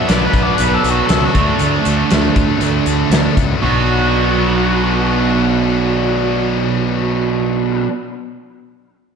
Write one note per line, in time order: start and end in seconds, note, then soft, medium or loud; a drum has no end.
0.00 1.33 B2 medium
0.00 1.36 F#3 medium
0.00 1.34 B3 medium
0.00 0.12 D4 medium
0.08 0.26 B1 medium
0.08 0.59 B2 medium
0.08 0.36 F#3 medium
0.08 0.34 B3 medium
0.08 0.25 D5 medium
0.08 snare loud
0.08 closed hi-hat medium
0.12 0.34 D4 medium
0.26 0.43 B4 medium
0.34 0.50 B1 medium
0.34 0.60 F#3 medium
0.34 0.61 B3 medium
0.34 0.63 D4 medium
0.34 kick medium
0.34 closed hi-hat medium
0.43 0.56 D5 medium
0.57 0.75 B1 medium
0.57 1.08 B2 medium
0.57 0.74 B4 medium
0.57 closed hi-hat medium
0.61 0.89 F#3 medium
0.61 0.86 B3 medium
0.61 0.85 D4 medium
0.73 0.91 A4 medium
0.84 1.01 B1 medium
0.84 1.10 B3 medium
0.84 1.12 D4 medium
0.84 closed hi-hat medium
0.89 1.10 F#3 medium
0.89 1.06 F#4 medium
1.07 1.26 C#2 medium
1.07 1.33 B2 medium
1.07 1.36 F#3 medium
1.07 1.24 A4 medium
1.07 snare loud
1.07 closed hi-hat medium
1.12 1.34 B3 medium
1.12 1.33 D4 medium
1.26 1.50 F#4 medium
1.34 1.51 D2 medium
1.34 1.58 D3 medium
1.34 1.59 F#3 medium
1.34 1.59 A3 medium
1.34 1.61 D4 medium
1.34 kick medium
1.34 closed hi-hat medium
1.59 1.77 D2 medium
1.59 2.08 D3 medium
1.59 1.86 F#3 medium
1.59 1.85 A3 medium
1.59 1.83 D4 medium
1.59 closed hi-hat medium
1.85 2.02 D2 medium
1.85 2.09 F#3 medium
1.85 2.11 A3 medium
1.85 2.12 D4 medium
1.85 closed hi-hat medium
2.09 2.28 D2 medium
2.09 2.59 D3 medium
2.09 2.39 F#3 medium
2.09 2.37 A3 medium
2.09 2.35 D4 medium
2.09 snare medium
2.09 closed hi-hat medium
2.36 2.53 D2 medium
2.36 2.61 F#3 medium
2.36 2.62 A3 medium
2.36 2.63 D4 medium
2.36 kick medium
2.36 closed hi-hat medium
2.61 2.78 D2 medium
2.61 3.11 D3 medium
2.61 2.88 F#3 medium
2.61 2.86 A3 medium
2.61 2.85 D4 medium
2.61 closed hi-hat medium
2.86 3.03 D2 medium
2.86 3.12 F#3 soft
2.86 3.14 A3 soft
2.86 3.14 D4 medium
2.86 closed hi-hat medium
3.10 3.27 D2 medium
3.10 3.61 D3 medium
3.10 3.61 F#3 medium
3.10 snare loud
3.10 closed hi-hat medium
3.15 3.62 A3 medium
3.15 3.62 D4 medium
3.37 3.53 C#2 medium
3.37 kick medium
3.37 closed hi-hat medium
3.62 7.84 B1 medium
3.62 7.87 B2 medium
3.62 7.88 F#3 medium
3.62 7.89 B3 medium
3.62 7.84 F#4 medium
3.66 7.91 D4 medium